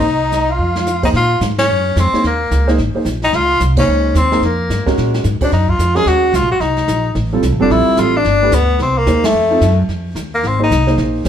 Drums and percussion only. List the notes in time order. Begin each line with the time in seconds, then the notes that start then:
0.05 brush sweep
0.32 snare, hi-hat pedal
0.76 snare
0.87 snare, hi-hat pedal
1.03 kick, crash
1.14 brush sweep, snare
1.41 snare, hi-hat pedal
1.58 snare, ride
1.69 brush sweep
1.96 snare, hi-hat pedal
2.14 snare
2.24 brush sweep, snare
2.51 snare, hi-hat pedal
2.68 snare
2.78 brush sweep, snare
3.05 snare, hi-hat pedal
3.22 snare
3.33 brush sweep, snare
3.60 snare, hi-hat pedal
3.77 kick, crash
3.87 brush sweep
4.15 snare, hi-hat pedal
4.32 snare
4.42 brush sweep, snare
4.70 snare, hi-hat pedal
4.87 kick, snare
4.98 snare
5.14 snare
5.24 snare, hi-hat pedal
5.41 kick, crash
5.52 brush sweep, snare
5.68 kick
5.79 snare, hi-hat pedal
5.96 snare
6.06 brush sweep, snare
6.34 snare, hi-hat pedal
6.61 brush sweep, snare
6.77 snare
6.88 snare, hi-hat pedal
7.15 brush sweep, snare
7.43 snare, hi-hat pedal
7.70 brush sweep, snare
7.97 snare, hi-hat pedal
8.24 brush sweep, snare
8.52 snare, hi-hat pedal
8.79 brush sweep, snare
9.06 snare, hi-hat pedal
9.24 snare, ride
9.34 brush sweep
9.61 snare, hi-hat pedal
9.89 brush sweep, snare
10.16 snare, hi-hat pedal
10.43 brush sweep, snare
10.71 snare, hi-hat pedal
10.87 snare
10.98 brush sweep, snare
11.25 snare, hi-hat pedal